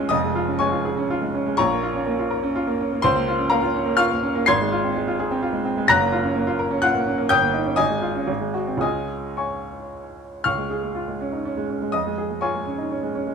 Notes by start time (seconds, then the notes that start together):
Already playing: C#2 C#4 F4 G#4 F5 C#6 F6
0.00 G#3
0.09 F1 F2 D#5 D#6
0.23 G#3
0.35 F4
0.48 C#4
0.59 G#3 C#5 G#5 C#6
0.72 F4
0.85 G#4
0.97 C#4
1.10 F4
1.22 G#3
1.35 C#4
1.46 G#3
1.57 A#1 C#5 A#5 C#6
1.70 A#3
1.83 F4
1.94 C#4
2.06 A#3
2.19 F4
2.30 A#4
2.43 C#4
2.55 F4
2.67 A#3
2.81 C#4
2.92 A#3
3.02 C#2 C5 C6
3.15 A#3
3.28 F4
3.39 C#4
3.50 A#3 A#4 F5 A#5
3.62 F4
3.75 C#4
3.86 A#3
3.97 F4 F5 C#6 F6
4.10 A#3
4.23 C#4
4.35 A#3
4.46 G#1 C6 G#6 C7
4.61 G#3
4.72 F4
4.84 C4
4.96 G#3
5.08 F4
5.19 G#4
5.31 C4
5.42 F4
5.53 G#3
5.65 C4
5.78 G#3
5.88 F#1 A#5 F#6 A#6
5.99 A#3
6.12 F4
6.23 C#4
6.35 A#3
6.47 F4
6.59 A#4
6.71 C#4
6.82 F4 F#5 F#6
6.95 A#3
7.07 C#4
7.18 A#3
7.29 G1 G5 D#6 G6
7.42 A#3
7.54 D#4
7.65 C#4
7.76 G#1 D#5 G#5 D#6
7.90 G#3
8.02 F4
8.15 C#4
8.27 G#1
8.40 G#3
8.54 F#4
8.68 C4
8.77 C#2 G#3 C#4 F4 D#6
8.82 D#5 G#5
9.37 C#5 G#5 C#6
10.44 C#2 F5 C#6 F6
10.58 G#3
10.70 G#4
10.83 G#3
10.95 F4
11.08 G#3
11.21 C#4
11.32 D#4
11.45 C#4
11.57 G#3
11.69 C#4
11.82 G#3
11.92 F2 D#5 D#6
12.06 G#3
12.18 G#4
12.31 G#3
12.41 F4 C#5 G#5 C#6
12.55 G#3
12.66 C#4
12.78 D#4
12.90 C#4
13.03 G#3
13.15 C#4
13.27 G#3